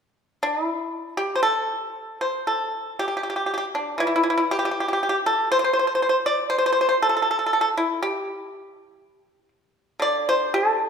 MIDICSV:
0, 0, Header, 1, 2, 480
1, 0, Start_track
1, 0, Tempo, 1018676
1, 919, Time_signature, 4, 2, 24, 8
1, 2366, Tempo, 1000000
1, 5184, End_track
2, 0, Start_track
2, 0, Title_t, "Pipa"
2, 0, Program_c, 0, 105
2, 201, Note_on_c, 0, 62, 68
2, 300, Note_off_c, 0, 62, 0
2, 300, Note_on_c, 0, 64, 68
2, 534, Note_off_c, 0, 64, 0
2, 553, Note_on_c, 0, 67, 60
2, 634, Note_off_c, 0, 67, 0
2, 638, Note_on_c, 0, 72, 50
2, 670, Note_off_c, 0, 72, 0
2, 672, Note_on_c, 0, 69, 67
2, 1024, Note_off_c, 0, 69, 0
2, 1042, Note_on_c, 0, 72, 53
2, 1157, Note_off_c, 0, 72, 0
2, 1164, Note_on_c, 0, 69, 54
2, 1393, Note_off_c, 0, 69, 0
2, 1410, Note_on_c, 0, 67, 60
2, 1443, Note_off_c, 0, 67, 0
2, 1450, Note_on_c, 0, 67, 38
2, 1481, Note_off_c, 0, 67, 0
2, 1493, Note_on_c, 0, 67, 41
2, 1518, Note_off_c, 0, 67, 0
2, 1523, Note_on_c, 0, 67, 37
2, 1548, Note_off_c, 0, 67, 0
2, 1554, Note_on_c, 0, 67, 42
2, 1578, Note_off_c, 0, 67, 0
2, 1583, Note_on_c, 0, 67, 37
2, 1617, Note_off_c, 0, 67, 0
2, 1632, Note_on_c, 0, 67, 39
2, 1659, Note_off_c, 0, 67, 0
2, 1666, Note_on_c, 0, 67, 43
2, 1680, Note_off_c, 0, 67, 0
2, 1685, Note_on_c, 0, 67, 51
2, 1719, Note_off_c, 0, 67, 0
2, 1766, Note_on_c, 0, 62, 53
2, 1873, Note_off_c, 0, 62, 0
2, 1875, Note_on_c, 0, 52, 44
2, 1886, Note_on_c, 0, 64, 66
2, 1912, Note_off_c, 0, 64, 0
2, 1917, Note_on_c, 0, 64, 49
2, 1952, Note_off_c, 0, 64, 0
2, 1959, Note_on_c, 0, 64, 55
2, 1990, Note_off_c, 0, 64, 0
2, 1995, Note_on_c, 0, 64, 49
2, 2021, Note_off_c, 0, 64, 0
2, 2026, Note_on_c, 0, 64, 53
2, 2056, Note_off_c, 0, 64, 0
2, 2061, Note_on_c, 0, 64, 48
2, 2093, Note_off_c, 0, 64, 0
2, 2126, Note_on_c, 0, 67, 68
2, 2156, Note_off_c, 0, 67, 0
2, 2162, Note_on_c, 0, 67, 44
2, 2186, Note_off_c, 0, 67, 0
2, 2192, Note_on_c, 0, 67, 49
2, 2215, Note_off_c, 0, 67, 0
2, 2221, Note_on_c, 0, 67, 39
2, 2257, Note_off_c, 0, 67, 0
2, 2263, Note_on_c, 0, 67, 48
2, 2296, Note_off_c, 0, 67, 0
2, 2301, Note_on_c, 0, 67, 41
2, 2318, Note_off_c, 0, 67, 0
2, 2323, Note_on_c, 0, 67, 46
2, 2361, Note_off_c, 0, 67, 0
2, 2370, Note_on_c, 0, 67, 43
2, 2395, Note_off_c, 0, 67, 0
2, 2400, Note_on_c, 0, 67, 54
2, 2435, Note_off_c, 0, 67, 0
2, 2482, Note_on_c, 0, 69, 69
2, 2597, Note_off_c, 0, 69, 0
2, 2603, Note_on_c, 0, 72, 76
2, 2634, Note_off_c, 0, 72, 0
2, 2640, Note_on_c, 0, 72, 53
2, 2659, Note_off_c, 0, 72, 0
2, 2665, Note_on_c, 0, 72, 53
2, 2702, Note_off_c, 0, 72, 0
2, 2708, Note_on_c, 0, 72, 47
2, 2731, Note_off_c, 0, 72, 0
2, 2737, Note_on_c, 0, 72, 49
2, 2769, Note_off_c, 0, 72, 0
2, 2774, Note_on_c, 0, 72, 43
2, 2806, Note_off_c, 0, 72, 0
2, 2812, Note_on_c, 0, 72, 48
2, 2841, Note_off_c, 0, 72, 0
2, 2847, Note_on_c, 0, 72, 41
2, 2875, Note_off_c, 0, 72, 0
2, 2881, Note_on_c, 0, 72, 55
2, 2916, Note_off_c, 0, 72, 0
2, 2961, Note_on_c, 0, 74, 65
2, 3072, Note_off_c, 0, 74, 0
2, 3074, Note_on_c, 0, 72, 66
2, 3110, Note_off_c, 0, 72, 0
2, 3116, Note_on_c, 0, 72, 53
2, 3147, Note_off_c, 0, 72, 0
2, 3153, Note_on_c, 0, 72, 59
2, 3178, Note_off_c, 0, 72, 0
2, 3184, Note_on_c, 0, 72, 52
2, 3219, Note_off_c, 0, 72, 0
2, 3224, Note_on_c, 0, 72, 56
2, 3256, Note_off_c, 0, 72, 0
2, 3262, Note_on_c, 0, 72, 52
2, 3295, Note_off_c, 0, 72, 0
2, 3322, Note_off_c, 0, 52, 0
2, 3328, Note_on_c, 0, 69, 68
2, 3355, Note_off_c, 0, 69, 0
2, 3361, Note_on_c, 0, 69, 45
2, 3390, Note_off_c, 0, 69, 0
2, 3396, Note_on_c, 0, 69, 51
2, 3417, Note_off_c, 0, 69, 0
2, 3423, Note_on_c, 0, 69, 45
2, 3458, Note_off_c, 0, 69, 0
2, 3464, Note_on_c, 0, 69, 50
2, 3496, Note_off_c, 0, 69, 0
2, 3502, Note_on_c, 0, 69, 41
2, 3533, Note_off_c, 0, 69, 0
2, 3539, Note_on_c, 0, 69, 47
2, 3565, Note_off_c, 0, 69, 0
2, 3571, Note_on_c, 0, 69, 48
2, 3603, Note_off_c, 0, 69, 0
2, 3609, Note_on_c, 0, 69, 56
2, 3641, Note_off_c, 0, 69, 0
2, 3688, Note_on_c, 0, 64, 58
2, 3801, Note_off_c, 0, 64, 0
2, 3808, Note_on_c, 0, 67, 69
2, 4508, Note_off_c, 0, 67, 0
2, 4753, Note_on_c, 0, 50, 50
2, 4766, Note_on_c, 0, 74, 72
2, 4879, Note_off_c, 0, 74, 0
2, 4894, Note_on_c, 0, 72, 69
2, 5003, Note_off_c, 0, 72, 0
2, 5015, Note_on_c, 0, 69, 73
2, 5184, Note_off_c, 0, 50, 0
2, 5184, Note_off_c, 0, 69, 0
2, 5184, End_track
0, 0, End_of_file